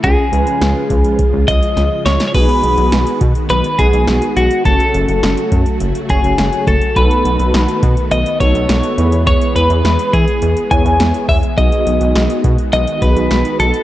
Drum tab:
CC |----------------|x---------------|----------------|----------------|
HH |x-xxx-xxx-xxx-xx|xxxxxxxxxxxxxxxx|xxxxxxxxxxxxxxxx|xxxxxxxxxxxxxxxx|
SD |----o-------o-oo|----o-------o---|----o-------o---|----o-------o---|
BD |o-----o-o-o-----|o-----o---o-----|o-----o---o---o-|o-----o---o-----|

CC |----------------|----------------|
HH |xxxxxxxxxxxxxxox|xxxxxxxxxxxxxxxx|
SD |----o-------o---|----o-------o---|
BD |o-----o---o---o-|o-----o---o-----|